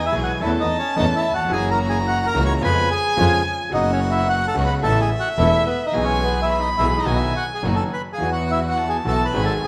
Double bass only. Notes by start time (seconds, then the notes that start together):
Already playing: E2
0.15 B1
0.42 E2
0.97 E2
1.51 F#1
2.34 C#2
2.62 F2
3.18 F2
3.72 F#1
4.55 C#2
4.84 A1
5.38 E1
5.95 B1
6.78 B1
7.06 B1
7.63 F#1
8.20 E2
9.06 B1
9.35 G#1